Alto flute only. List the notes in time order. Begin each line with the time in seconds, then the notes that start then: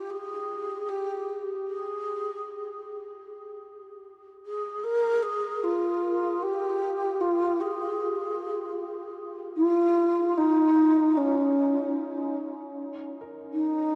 Already playing: G4
0.10 G#4
0.89 G4
1.68 G#4
4.46 G#4
4.83 A#4
5.22 G#4
5.63 F4
6.43 G4
7.21 F4
7.60 G#4
9.57 F4
10.37 D#4
11.17 C#4
13.53 D#4